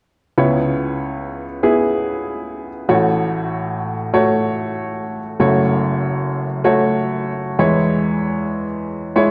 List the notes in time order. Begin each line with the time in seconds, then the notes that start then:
0.37 C#2 C#3 B3 E4 C#5
1.63 B3 E4 G#4
2.89 A1 A2 A3 F#4 C#5
4.14 A3 F#4 C#5
5.40 F#1 F#2 A3 F#4 C#5
6.64 A3 F#4 C#5
7.59 E2 E3 G#3 E4 C#5
9.16 G#3 E4 C#5